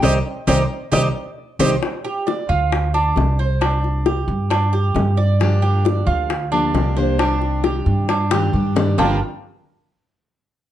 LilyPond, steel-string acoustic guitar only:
\new Staff \with { instrumentName = "Steel-string acoustic guitar" } { \time 4/4 \key g \minor \tempo 4 = 134 <ees g c'>8 r8 <ees g c'>8 r8 <ees g c'>8 r4 <ees g c'>8 | r1 | r1 | <d f bes d' g'>2 r8 <f bes d' g'>8 <f bes d' g'>8 <f bes d' g'>8 |
<c ees g d' g'>2 r8 <ees g d' g'>8 <ees g d' g'>8 <ees g d' g'>8 | <g, d f bes d' g'>8 r2. r8 | }